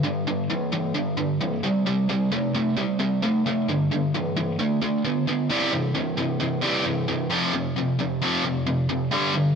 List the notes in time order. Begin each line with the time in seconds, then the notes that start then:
0.04 G2 D3
0.27 G2 D3
0.50 G2 E3
0.72 G2 E3
0.94 G2 D3
1.17 G2 D3
1.41 G2 E3
1.63 C3 G3
1.86 C3 G3
2.09 C3 G3
2.32 C3 A3
2.55 C3 A3
2.77 C3 G3
3.00 C3 G3
3.23 C3 A3
3.46 C3 A3
3.69 G2 D3
3.91 G2 D3
4.14 G2 E3
4.37 G2 E3
4.59 D3 A3
4.82 D3 A3
5.04 D3 B3
5.27 D3 B3
5.50 C3 E3 G3
5.73 C3 E3
5.95 C3 E3
6.18 C3 E3
6.41 C3 E3
6.62 C3 E3 G3
6.85 C3 E3
7.08 C3 E3
7.30 F2 C3 F3
7.53 F2 C3
7.76 F2 C3
7.99 F2 C3
8.22 F2 C3 F3
8.45 F2 C3
8.67 F2 C3
8.89 F2 C3
9.12 G2 D3 G3
9.35 G2 D3